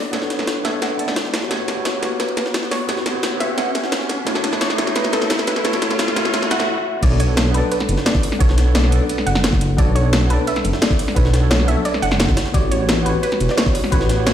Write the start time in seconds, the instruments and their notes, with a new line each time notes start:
Already playing: tine electric piano D4 A4 C#5, synth pluck D5, riser
0.11 tine electric piano B3 D4 A4 C#5, snare, closed hi-hat, ride
0.22 snare
0.30 snare, closed hi-hat, ride
0.37 tine electric piano B3 D4 A4 C#5, snare
0.47 snare, closed hi-hat, ride
0.63 tine electric piano B3 D4 A4 C#5, synth pluck E5, snare, closed hi-hat, ride
0.82 synth pluck F#5, snare, closed hi-hat, ride
0.97 tine electric piano B3 D4 A4 D5, closed hi-hat, ride
1.06 tine electric piano B3 D4 A4 D5, snare
1.16 snare, closed hi-hat, ride
1.25 snare
1.34 snare, closed hi-hat, ride
1.41 tine electric piano B3 F#4 G4 C#5, snare
1.49 tine electric piano B3 F#4 G4 C#5, snare, closed hi-hat, ride
1.68 snare, closed hi-hat, ride
1.75 tine electric piano B3 F#4 G4 C#5
1.85 synth pluck C#5, snare, closed hi-hat, ride
1.99 tine electric piano B3 F#4, snare, closed hi-hat, ride
2.04 tine electric piano G4 C#5
2.20 synth pluck B4, snare, closed hi-hat, ride
2.29 ride
2.37 snare, closed hi-hat, ride
2.46 snare
2.54 snare, closed hi-hat, ride
2.63 snare
2.71 synth pluck C#5, snare, closed hi-hat, open hi-hat
2.87 tine electric piano B3 F#4 G4 C#5, snare, closed hi-hat, ride
2.97 snare
3.06 snare, closed hi-hat, ride
3.13 tine electric piano B3 F#4 G4 C#5
3.23 snare, closed hi-hat, ride
3.37 tine electric piano B3 F#4, synth pluck E5, snare, closed hi-hat, ride
3.42 tine electric piano G4 C#5
3.58 synth pluck F#5, snare, closed hi-hat, ride
3.75 snare, closed hi-hat, ride
3.84 snare
3.92 snare, closed hi-hat, ride
4.01 snare
4.09 snare, closed hi-hat, ride
4.25 tine electric piano A3 E4 F#4 C#5, snare, closed hi-hat, ride
4.35 snare
4.44 snare, closed hi-hat, ride
4.51 tine electric piano A3 E4 F#4 C#5, snare
4.61 synth pluck C#5, snare, closed hi-hat, ride
4.70 snare
4.75 tine electric piano A3 E4, snare, closed hi-hat, ride
4.79 tine electric piano F#4 C#5
4.87 snare
4.96 synth pluck B4, snare, closed hi-hat, ride
5.04 snare, ride
5.13 synth pluck A4, snare, closed hi-hat, ride
5.22 snare
5.30 snare, closed hi-hat, ride
5.39 snare
5.47 synth pluck B4, snare, closed hi-hat, ride
5.56 snare
5.63 tine electric piano A3 E4 F#4 C#5, synth pluck A4, snare, closed hi-hat, ride
5.73 snare, ride
5.82 snare, closed hi-hat
5.89 tine electric piano A3 E4 F#4 C#5, snare, ride
5.99 snare, closed hi-hat, ride
6.08 snare
6.15 tine electric piano A3 E4 F#4 C#5, snare, closed hi-hat, ride
6.25 snare
6.34 snare, closed hi-hat, ride
6.42 snare
6.49 tine electric piano A3 E4 F#4 E5, synth pluck F#5, snare, closed hi-hat, ride
6.58 tine electric piano A3 E4 F#4 E5, snare
7.01 detuned saw bass B1, tine electric piano B3 D4 A4 C#5, synth pluck D5, kick, closed hi-hat, crash, ride
7.20 synth pluck C#5, closed hi-hat, ride
7.27 tine electric piano B3 D4 A4 C#5
7.37 snare, closed hi-hat, ride
7.51 detuned saw bass B1, tine electric piano B3 D4, synth pluck B4, closed hi-hat, ride
7.56 tine electric piano A4 D5
7.72 synth pluck B4, closed hi-hat, ride
7.80 snare, ride
7.89 detuned saw bass F#1, closed hi-hat, ride
7.97 snare
8.06 synth pluck D5, snare, closed hi-hat, ride
8.15 kick, snare
8.23 closed hi-hat, open hi-hat
8.32 snare
8.39 detuned saw bass B1, tine electric piano B3 D4 A4 C#5, synth pluck C#5, kick, closed hi-hat, ride
8.49 snare
8.58 snare, closed hi-hat, ride
8.65 tine electric piano B3 D4 A4 C#5
8.75 synth pluck D5, snare, closed hi-hat, ride
8.84 snare
8.89 detuned saw bass B1, tine electric piano B3 D4, closed hi-hat, ride
8.94 tine electric piano A4 D5
9.09 closed hi-hat, ride
9.18 snare
9.26 detuned saw bass F#1, synth pluck F#5, closed hi-hat, ride
9.35 snare
9.44 snare, closed hi-hat, ride
9.53 kick, snare
9.61 closed hi-hat, ride
9.77 detuned saw bass B1, tine electric piano B3 D4 A4 C#5, synth pluck D5, kick, closed hi-hat, ride
9.95 synth pluck C#5, closed hi-hat, ride
10.03 tine electric piano B3 D4 A4 C#5
10.13 snare, closed hi-hat, ride
10.27 detuned saw bass B1, tine electric piano B3 D4, synth pluck B4, closed hi-hat, ride
10.31 tine electric piano A4 D5
10.47 synth pluck E5, closed hi-hat, ride
10.56 snare, ride
10.65 detuned saw bass F#1, closed hi-hat, ride
10.73 snare
10.82 synth pluck D5, snare, closed hi-hat, ride
10.91 kick, snare
10.99 closed hi-hat, open hi-hat
11.08 snare
11.15 detuned saw bass B1, tine electric piano B3 D4 A4 C#5, synth pluck B4, kick, closed hi-hat, ride
11.25 snare
11.34 snare, closed hi-hat, ride
11.41 tine electric piano B3 D4 A4 C#5
11.51 synth pluck C#5, snare, closed hi-hat, ride
11.60 snare
11.65 detuned saw bass B1, tine electric piano B3 D4, synth pluck E5, closed hi-hat, ride
11.69 tine electric piano A4 C#5
11.85 synth pluck D5, closed hi-hat, ride
11.94 snare
12.02 detuned saw bass F#1, synth pluck F#5, closed hi-hat, ride
12.11 snare
12.20 snare, closed hi-hat, ride
12.29 kick, snare
12.37 snare, closed hi-hat, ride
12.46 snare
12.53 detuned saw bass A1, tine electric piano B3 F#4 G4 C#5, synth pluck D5, kick, closed hi-hat, ride
12.71 synth pluck C#5, closed hi-hat, ride
12.79 tine electric piano B3 F#4 G4 C#5
12.89 snare, closed hi-hat, ride
13.03 detuned saw bass A1, tine electric piano B3 F#4, synth pluck B4, closed hi-hat, ride
13.07 tine electric piano G4 C#5
13.23 synth pluck B4, closed hi-hat, ride
13.32 snare, ride
13.40 detuned saw bass E1, closed hi-hat, ride
13.49 synth pluck D5, snare
13.57 synth pluck C#5, snare, closed hi-hat, ride
13.66 kick, snare
13.75 closed hi-hat, open hi-hat
13.84 snare
13.91 detuned saw bass A1, tine electric piano B3 F#4 G4 C#5, synth pluck B4, kick, closed hi-hat, ride
14.01 snare
14.09 snare, closed hi-hat, ride
14.17 tine electric piano B3 F#4 G4 C#5
14.26 synth pluck C#5, snare, closed hi-hat, ride